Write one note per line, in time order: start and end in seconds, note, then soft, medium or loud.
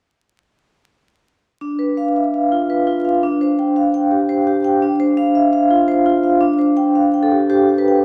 1.61 3.19 D4 soft
1.79 2.08 B4 soft
1.97 2.26 F5 soft
2.16 2.34 E5 soft
2.34 2.62 F5 soft
2.52 2.80 F4 soft
2.70 2.98 B4 soft
2.87 3.16 F4 soft
3.05 3.23 F5 soft
3.23 4.79 D4 medium
3.41 3.70 C5 soft
3.59 3.87 G5 soft
3.76 3.94 F5 soft
3.94 4.23 G5 soft
4.11 4.40 G4 soft
4.29 4.58 C5 soft
4.47 4.75 G4 soft
4.64 4.82 G5 soft
4.82 6.38 D4 medium
5.00 5.28 C5 soft
5.17 5.46 F5 soft
5.35 5.53 E5 soft
5.53 5.81 F5 soft
5.71 5.99 F4 soft
5.88 6.17 C5 soft
6.06 6.35 F4 soft
6.23 6.42 F5 soft
6.41 8.03 D4 medium
6.59 6.88 C5 soft
6.77 7.07 G5 soft
6.95 7.14 F5 soft
7.14 7.44 G5 soft
7.23 7.51 A4 medium
7.31 7.48 G4 soft
7.50 7.68 G4 medium
7.50 7.81 C5 soft
7.69 8.00 G4 soft
7.78 8.05 B4 medium
7.88 8.05 G5 soft